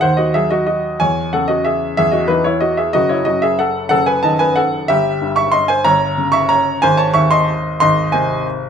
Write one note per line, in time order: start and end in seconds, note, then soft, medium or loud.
0.00 0.98 D#2 medium
0.00 0.42 D#3 medium
0.00 0.17 C5 medium
0.00 0.18 F#5 loud
0.17 0.34 F#4 medium
0.17 0.34 D#5 medium
0.34 1.01 F#3 medium
0.34 0.51 G#4 medium
0.34 0.51 E5 loud
0.50 0.66 F#4 medium
0.50 0.65 D#5 medium
0.67 0.98 F#4 medium
0.67 1.00 D#5 medium
1.00 1.95 E2 medium
1.00 1.31 C#5 medium
1.00 1.32 G#5 loud
1.33 2.36 C#3 medium
1.33 1.49 A4 medium
1.33 1.49 F#5 loud
1.48 1.65 F#4 medium
1.48 1.65 D#5 loud
1.65 1.96 G#4 medium
1.65 1.96 E5 loud
1.97 2.91 E2 medium
1.97 2.12 G#4 medium
1.97 2.13 E5 loud
2.12 2.28 F#4 medium
2.12 2.28 D#5 medium
2.28 2.93 E3 medium
2.28 2.44 D#4 medium
2.28 2.44 B4 loud
2.44 2.61 E4 medium
2.44 2.61 C#5 medium
2.60 2.77 F#4 medium
2.60 2.77 D#5 loud
2.77 2.93 G#4 medium
2.77 2.93 E5 medium
2.93 3.89 F#1 medium
2.93 3.09 F#4 medium
2.93 3.09 D#5 loud
3.09 3.25 E4 medium
3.09 3.26 C#5 medium
3.25 4.31 F#2 medium
3.25 3.42 F#4 medium
3.25 3.42 D#5 loud
3.42 3.59 G#4 medium
3.42 3.59 E5 loud
3.59 3.89 A4 medium
3.59 3.88 F#5 loud
3.89 4.86 F#1 medium
3.89 4.06 A4 medium
3.89 4.06 F#5 loud
4.06 4.23 B4 medium
4.06 4.23 G#5 loud
4.23 4.90 D#3 medium
4.23 4.40 D#5 medium
4.23 4.40 A5 loud
4.39 4.56 B4 medium
4.39 4.57 G#5 loud
4.56 4.87 A4 medium
4.56 4.89 F#5 loud
4.88 5.82 G1 medium
4.88 5.34 G4 medium
4.88 5.35 E5 loud
5.22 6.24 G2 medium
5.36 5.52 E5 medium
5.36 5.53 C#6 loud
5.52 5.68 D#5 medium
5.52 5.69 C6 loud
5.68 5.84 C5 medium
5.68 5.85 G#5 loud
5.85 6.80 G1 medium
5.85 6.30 C#5 loud
5.85 6.33 A#5 loud
6.18 6.83 C#3 medium
6.32 6.49 E5 loud
6.32 6.49 C#6 loud
6.49 6.80 C#5 medium
6.49 6.82 A#5 loud
6.82 7.78 G#1 medium
6.82 6.98 C5 loud
6.82 6.98 G#5 loud
6.97 7.14 C#5 medium
6.97 7.14 A5 loud
7.14 8.18 D#2 medium
7.14 7.30 E5 medium
7.14 7.31 C#6 loud
7.31 7.77 D#5 medium
7.31 7.79 C6 loud
7.80 8.69 G#1 medium
7.80 8.11 D#5 loud
7.80 8.12 C6 loud
8.12 8.69 C3 medium
8.12 8.43 C5 medium
8.12 8.45 G#5 loud